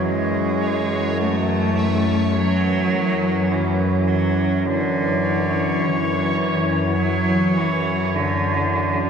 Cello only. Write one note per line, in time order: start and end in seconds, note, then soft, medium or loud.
0.05 1.22 G#3 medium
1.20 2.34 A3 medium
2.37 3.53 F#3 loud
3.52 4.09 E3 medium
4.07 4.68 F#3 medium
4.66 5.87 D3 medium
5.86 6.97 E3 medium
6.98 7.59 F#3 medium
7.58 8.16 E3 medium
8.15 9.10 D3 medium